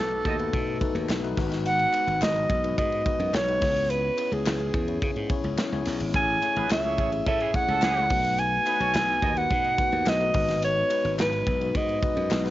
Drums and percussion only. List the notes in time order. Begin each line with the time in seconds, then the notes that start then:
0.11 ride
0.25 kick, ride
0.39 ride
0.53 kick, ride
0.81 kick, ride
0.95 ride
1.09 snare, clap, ride
1.24 ride
1.37 kick, snare, crash
1.52 snare, ride
1.66 hi-hat pedal, ride
1.79 ride
1.93 clap, ride
2.08 ride
2.22 snare, clap, ride
2.36 ride
2.50 kick, ride
2.64 ride
2.78 kick, ride
2.92 ride
3.06 kick, ride
3.20 ride
3.34 snare, clap, ride
3.48 ride
3.62 kick, snare, open hi-hat, ride
3.76 ride
3.90 hi-hat pedal, ride
4.18 clap, ride
4.32 ride
4.46 snare, clap, ride
4.60 ride
4.74 kick, ride
4.88 ride
5.02 kick, ride
5.16 ride
5.30 kick, ride
5.44 ride
5.58 snare, clap, ride
5.73 ride
5.86 snare, open hi-hat, ride
6.00 ride
6.14 kick, hi-hat pedal, ride
6.42 clap, ride
6.56 ride
6.70 snare, clap, ride
6.84 ride
6.98 kick, ride
7.12 ride
7.26 kick, ride
7.40 ride
7.54 kick, ride
7.68 ride
7.82 snare, clap, ride
7.97 ride
8.10 kick, open hi-hat, ride
8.24 ride
8.38 hi-hat pedal, ride
8.66 clap, ride
8.80 ride
8.94 snare, clap, ride
9.22 kick, ride
9.37 ride
9.50 kick, ride
9.64 ride
9.78 kick, ride
9.92 ride
10.06 snare, clap, ride
10.21 ride
10.34 kick, open hi-hat, ride
10.48 snare, ride
10.62 hi-hat pedal, ride
10.90 clap, ride
11.05 ride
11.19 snare, clap, ride
11.33 ride
11.47 kick, ride
11.61 ride
11.75 kick, ride
11.89 ride
12.03 kick, ride
12.17 ride
12.31 snare, clap, ride
12.46 snare, ride